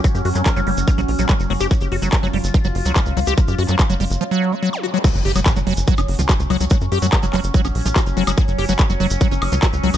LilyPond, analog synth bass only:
\new Staff \with { instrumentName = "Analog synth bass" } { \clef bass \time 4/4 \tempo 4 = 144 r16 fis,16 fis,16 fis,16 r16 fis,,16 fis,,16 fis,,16 r16 ais,,16 ais,,16 ais,,16 r16 fis,,16 fis,,16 fis,,16 | r16 fis,,16 fis,,16 fis,,16 r16 fis,,16 fis,,16 fis,,16 r16 fis,,16 fis,,16 cis,16 r16 cis,16 cis,16 cis,16 | r16 fis,16 fis,16 fis,16 r16 fis,,16 fis,,16 fis,,16 r2 | r16 fis,,16 fis,,16 fis,,16 r16 fis,,16 fis,,16 fis,,16 r16 fis,,16 fis,,16 cis,16 r16 cis,16 cis,16 cis,16 |
r16 fis,16 fis,16 fis,16 r16 fis,,16 fis,,16 fis,,16 r16 ais,,16 ais,,16 ais,,16 r16 fis,,16 fis,,16 fis,,16 | r16 fis,,16 fis,,16 fis,,16 r16 fis,,16 fis,,16 fis,,16 r16 fis,,16 fis,,16 cis,16 r16 cis,16 cis,16 cis,16 | }